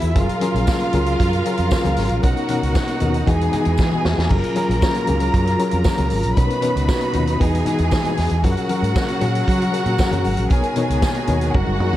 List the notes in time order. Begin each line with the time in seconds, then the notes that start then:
Already playing: E3 F#3 G#3 B3 D#4 E4 F#4 G#4 E5
0.02 E2, closed hi-hat
0.14 F#1 C#3 F#3 C#4 F4 G#4 A#4 F5, kick, closed hi-hat, muted conga
0.29 closed hi-hat
0.41 F#3 C#4 F4 G#4 A#4, closed hi-hat, muted conga
0.54 A#1, closed hi-hat
0.67 kick, snare, tambourine, high conga
0.80 closed hi-hat
0.93 C#2 F#3 C#4 F4 G#4 A#4, closed hi-hat, muted conga, low conga
1.06 closed hi-hat
1.20 F#2, kick, closed hi-hat, muted conga
1.33 closed hi-hat
1.45 F#3 C#4 F4 G#4 A#4, closed hi-hat
1.57 F2, closed hi-hat
1.71 kick, snare, tambourine, high conga
1.84 C#2 F#3 C#4 F4 G#4 A#4, closed hi-hat, high conga
1.97 G#1, snare, open hi-hat
2.09 A#1, closed hi-hat
2.23 B1 B2 B3 C#4 D#4 F#4 A#4 F#5, kick, closed hi-hat, muted conga
2.37 closed hi-hat
2.49 B2 B3 C#4 D#4 A#4, closed hi-hat, muted conga
2.63 C#2, closed hi-hat
2.75 kick, snare, tambourine, high conga
2.88 closed hi-hat
3.00 D#2 B2 B3 C#4 D#4 A#4, closed hi-hat, muted conga, low conga
3.14 closed hi-hat
3.26 E2 E3 G#3 B3 D#4 F#4 G#4 G#5, kick, closed hi-hat
3.41 closed hi-hat
3.51 E3 B3 D#4 F#4 G#4, closed hi-hat, low conga
3.65 E2, closed hi-hat
3.78 E3, kick, snare, tambourine, high conga
3.91 E3 B3 D#4 F#4 G#4, high conga
4.05 E2, snare
4.18 E2, snare
4.29 F#1 C#3 F#3 A#3 C#4 F4 G#4 A#4 A#5, kick, crash, muted conga
4.44 closed hi-hat
4.55 F#3 C#4 F4 G#4 A#4, closed hi-hat, muted conga
4.69 A#1, closed hi-hat
4.82 kick, snare, tambourine, high conga
4.94 closed hi-hat
5.07 C#2 F#3 C#4 F4 G#4 A#4, closed hi-hat, muted conga, low conga
5.20 closed hi-hat
5.34 F#2, kick, closed hi-hat, muted conga
5.47 closed hi-hat
5.59 F#3 C#4 F4 G#4 A#4, closed hi-hat
5.71 F2, closed hi-hat
5.84 kick, snare, tambourine, high conga
5.97 C#2 F#3 C#4 F4 G#4 A#4, closed hi-hat, high conga
6.10 G#1, open hi-hat
6.23 A#1, closed hi-hat
6.36 B1 B2 F#3 B3 C#4 D#4 F#4 A#4 B4 B5, kick, closed hi-hat, muted conga
6.50 closed hi-hat
6.62 B2 B3 C#4 D#4 B4, closed hi-hat, muted conga
6.76 C#2, closed hi-hat
6.88 kick, snare, tambourine, high conga
7.01 closed hi-hat
7.13 D#2 B2 B3 C#4 D#4 F4, closed hi-hat, muted conga, low conga
7.27 closed hi-hat
7.40 E2 E3 G#3 B3 D#4 F#4 G#4 G#5, kick, closed hi-hat, muted conga
7.55 closed hi-hat
7.65 E3 B3 D#4 F#4 G#4, closed hi-hat, low conga
7.78 E2, closed hi-hat
7.91 E3, kick, snare, tambourine, high conga
8.04 E3 B3 D#4 F#4 G#4, closed hi-hat, high conga
8.17 E2, snare, open hi-hat
8.29 E2, closed hi-hat
8.43 F#2 C#3 F#3 C#4 F4 F#4 G#4 A#4 F#5, kick, closed hi-hat, muted conga
8.57 closed hi-hat
8.69 F#3 C#4 F#4 G#4 A#4, closed hi-hat, muted conga
8.82 G#2, closed hi-hat
8.96 kick, snare, tambourine, high conga
9.08 closed hi-hat
9.21 A#2 F#3 C#4 F#4 G#4 C#5, closed hi-hat, muted conga, low conga
9.35 closed hi-hat
9.47 F#3, kick, closed hi-hat, muted conga
9.62 closed hi-hat
9.72 F#3 C#4 F#4 G#4 A#4, closed hi-hat
9.86 A#2, closed hi-hat
9.98 kick, snare, tambourine, high conga
10.11 F#2 F#3 C#4 F#4 G#4 A#4, closed hi-hat, high conga
10.24 G#1, open hi-hat
10.37 A#1, closed hi-hat
10.50 B1 B2 D#3 B3 D#4 F#4 G#4 A#4 C#5 G#5, kick, closed hi-hat, muted conga
10.63 closed hi-hat
10.76 B2 B3 D#4 A#4 C#5, closed hi-hat, muted conga
10.90 C#2, closed hi-hat
11.02 kick, snare, tambourine, high conga
11.15 closed hi-hat
11.27 D#2 B2 B3 D#4 A#4 C#5, closed hi-hat, muted conga, low conga
11.41 closed hi-hat
11.53 F#1 F#3 A#3 C#4 D#4 F#4 G#4 A#4 F#5, kick, high tom
11.67 F#1
11.80 F#2 F#3 C#4 D#4 G#4 A#4, mid tom
11.93 D#2, mid tom